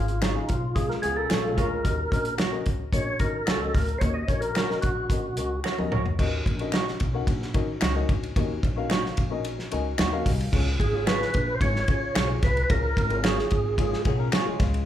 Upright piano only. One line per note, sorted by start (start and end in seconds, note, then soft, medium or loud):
0.00 0.45 C#3 medium
0.00 0.24 C#4 medium
0.00 0.24 F4 medium
0.00 0.24 G#4 medium
0.00 0.25 F5 medium
0.35 0.65 C#4 medium
0.35 0.65 F4 medium
0.35 0.65 G#4 medium
0.35 0.66 F5 medium
0.75 0.95 C#4 medium
0.75 0.96 F4 medium
0.75 0.96 G#4 medium
0.75 0.97 F5 medium
1.02 1.33 C#4 medium
1.02 1.33 F4 medium
1.02 1.33 G#4 medium
1.02 1.33 F5 medium
1.43 1.73 C#4 medium
1.43 1.74 F4 medium
1.43 1.74 G#4 medium
1.43 1.74 F5 medium
1.84 2.62 D#3 medium
1.84 2.04 C#4 medium
1.84 2.05 F#4 medium
1.84 2.05 A#4 medium
1.84 2.05 D#5 medium
2.11 2.41 C#4 medium
2.11 2.42 F#4 medium
2.11 2.42 A#4 medium
2.11 2.42 D#5 medium
2.51 2.82 C#4 medium
2.51 2.82 F#4 medium
2.51 2.82 A#4 medium
2.51 2.83 D#5 loud
2.93 3.13 C#4 medium
2.93 3.13 F#4 medium
2.93 3.13 A#4 medium
2.93 3.14 D#5 medium
3.20 3.50 C#4 medium
3.20 3.50 F#4 medium
3.20 3.50 A#4 medium
3.20 3.50 D#5 medium
3.60 3.90 C#4 medium
3.60 3.91 F#4 medium
3.60 3.91 A#4 medium
3.60 3.91 D#5 medium
4.00 4.79 D#3 medium
4.00 4.21 C#4 medium
4.00 4.21 F#4 medium
4.00 4.21 A#4 medium
4.00 4.22 D#5 medium
4.28 4.58 C#4 medium
4.28 4.59 F#4 medium
4.28 4.59 A#4 medium
4.28 4.59 D#5 medium
4.69 4.99 C#4 medium
4.69 4.99 F#4 medium
4.69 4.99 A#4 medium
4.69 5.00 D#5 medium
5.10 5.30 C#4 medium
5.10 5.30 F#4 medium
5.10 5.30 A#4 medium
5.10 5.31 D#5 medium
5.37 5.67 C#4 medium
5.37 5.67 F#4 medium
5.37 5.67 A#4 medium
5.37 5.68 D#5 medium
5.77 6.07 C#4 medium
5.77 6.08 F#4 medium
5.77 6.08 A#4 medium
5.77 6.08 D#5 loud
6.19 6.96 D#3 medium
6.19 6.48 C#4 medium
6.19 6.49 D#4 medium
6.19 6.49 F#4 medium
6.19 6.49 A#4 medium
6.19 6.49 D#5 loud
6.60 6.99 C#4 medium
6.60 6.99 D#4 medium
6.60 6.99 F#4 medium
6.60 7.00 A#4 medium
6.60 7.00 D#5 medium
7.13 7.43 C#4 medium
7.13 7.43 D#4 medium
7.13 7.44 F#4 medium
7.13 7.44 A#4 medium
7.13 7.44 F#5 medium
7.54 7.84 C#4 medium
7.54 7.84 D#4 medium
7.54 7.84 F#4 medium
7.54 7.84 A#4 medium
7.54 7.85 D#5 loud
7.94 8.24 C#4 loud
7.94 8.25 D#4 medium
7.94 8.25 F#4 medium
7.94 8.25 A#4 medium
7.94 8.25 D#5 loud
8.36 9.14 D#3 medium
8.36 8.65 C#4 medium
8.36 8.66 D#4 medium
8.36 8.66 F#4 medium
8.36 8.66 A#4 medium
8.36 8.66 D#5 loud
8.76 9.16 C#4 medium
8.76 9.16 D#4 medium
8.76 9.16 F#4 medium
8.76 9.16 A#4 medium
8.76 9.16 F5 loud
9.30 9.60 C#4 loud
9.30 9.60 D#4 medium
9.30 9.60 F#4 medium
9.30 9.61 A#4 medium
9.30 9.61 D#5 loud
9.71 10.01 C#4 medium
9.71 10.01 D#4 medium
9.71 10.01 F#4 medium
9.71 10.01 A#4 medium
9.71 10.02 D#5 loud
9.71 9.97 G#5 medium
9.99 10.24 F#5 medium
10.11 10.41 C#4 loud
10.11 10.41 D#4 medium
10.11 10.42 F#4 medium
10.11 10.42 A#4 medium
10.11 10.42 F5 loud
10.27 10.51 D#5 medium
10.52 11.30 C#3 medium
10.52 10.82 F4 medium
10.52 10.83 G#4 medium
10.52 10.83 C#5 loud
10.93 11.13 F4 medium
10.93 11.13 G#4 medium
10.93 11.14 C#5 medium
11.20 11.50 F4 medium
11.20 11.50 G#4 medium
11.20 11.51 C#5 medium
11.61 11.81 F4 medium
11.61 11.81 G#4 medium
11.61 11.82 C#5 medium
11.88 12.18 F4 medium
11.88 12.18 G#4 medium
11.88 12.19 C#5 medium
12.29 12.59 F4 medium
12.29 12.59 G#4 medium
12.29 12.60 C#5 medium
12.70 13.48 C#3 medium
12.70 12.99 F4 medium
12.70 13.00 G#4 medium
12.70 13.00 C#5 medium
13.10 13.30 F4 medium
13.10 13.31 G#4 medium
13.10 13.31 C#5 medium
13.38 13.67 F4 medium
13.38 13.68 G#4 medium
13.38 13.68 C#5 medium
13.79 13.98 F4 medium
13.79 13.99 G#4 medium
13.79 13.99 C#5 medium
14.05 14.35 F4 medium
14.05 14.36 G#4 medium
14.05 14.36 C#5 loud
14.46 14.76 F4 loud
14.46 14.76 G#4 medium
14.46 14.76 C#5 loud